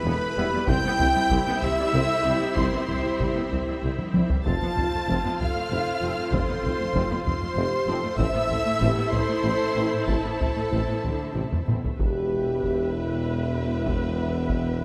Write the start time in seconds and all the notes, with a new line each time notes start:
Already playing: E4 G4 B4 E5 B5
0.03 E1 E2 B3 A4
0.36 E1 E2 G3 B3 E4 G4
0.53 E2 G3
0.68 C2 C4 E4 G4 C5 E5 G5 G6, taiko
0.84 C2 B3
1.00 C2 C4, taiko low
1.15 C2 G3
1.30 C2 G3 C4 E4, taiko
1.47 C2 B3
1.59 C2 C4 G4 E5 E6, taiko low
1.78 C2 G3
1.92 C2 C4 A4
2.23 C2 G3 C4 E4 G4
2.40 C2 G3
2.55 C2 C4 E4 C5 C6, taiko
2.73 C2 B3
2.88 C2 C4, taiko low
3.04 C2 G3
3.19 C2 G3 C4 E4, taiko
3.35 C2 B3
3.50 C2 C4, taiko low
3.67 C2 G3
3.82 C2 C4
3.99 taiko high
4.14 C2 G3 C4 E4, taiko high
4.29 C2 G3, taiko low
4.45 F1 F2 C4 F4 C5 F5 A5 A6, taiko
4.61 F2 B3
4.77 F1 F2 C4, taiko low
4.93 F2 A3
5.08 F1 F2 F3 C4, taiko
5.24 F2 B3
5.39 F1 F2 C4 A4 F5 F6, taiko low
5.55 F2 A3
5.71 F1 F2 C4
6.02 F1 F2 F3 C4
6.18 F2 A3
6.32 F1 F2 C4 A4 C5 C6, taiko
6.49 F2 B3
6.63 F1 F2 C4, taiko low
6.79 F2 A3
6.94 F1 F2 F3 C4, taiko
7.10 F2 B3
7.24 F1 F2 C4 F4 C5 C6, taiko low
7.40 F2 A3
7.56 F1 F2 C4 G4
7.87 F1 F2 F3 C4 A4
8.03 F2 A3
8.18 A1 A2 A3 C4 E4 A4 C5 E5 E6, taiko
8.34 A2 B3
8.49 A1 A2 C4 A4, taiko low
8.65 A2 A3
8.80 A1 A2 C4 G4, taiko
8.84 E3
8.96 A2 B3
9.11 A1 A2 C4 A4 C5 C6, taiko low
9.27 A2 A3
9.43 A1 A2 C4
9.75 A1 A2 E3 C4
9.91 A2 A3
10.07 A1 A2 C4 A4 C5 A5, taiko
10.24 A2 B3
10.39 A1 A2 C4, taiko low
10.55 A2 A3
10.71 A1 A2 E3 C4, taiko
10.87 A2 B3
11.02 A1 D3 C4, taiko low
11.20 A3
11.35 A1 C3 C4
11.52 taiko low-mid
11.67 A1 B2 E3 C4, taiko mid
11.84 A3, taiko low
11.98 E1 E2 G4 B4 E5 G5, taiko
12.63 taiko
12.92 E4
13.86 B3, taiko
14.49 taiko
14.79 B3